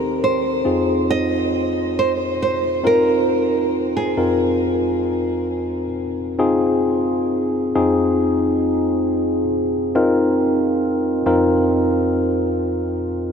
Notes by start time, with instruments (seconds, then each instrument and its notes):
Already playing: tine electric piano D#2 D#3 C4 D#4 G4 A4 A#4, nylon-string guitar A#4
0.24 nylon-string guitar C5
0.65 tine electric piano F2 C4 D#4 F4 G#4
1.10 nylon-string guitar D#5
1.99 nylon-string guitar C5
2.42 nylon-string guitar C5
2.83 tine electric piano C4 D#4 F4 A#4, nylon-string guitar A#4
3.97 nylon-string guitar G#4
4.17 tine electric piano F2 C4 D#4 F4 A#4
6.39 tine electric piano C4 D#4 F4 G#4
7.75 tine electric piano F2 C4 D#4 F4 G#4
9.95 tine electric piano C4 D#4 F4 A#4
11.26 tine electric piano F2 C4 D#4 F4 A#4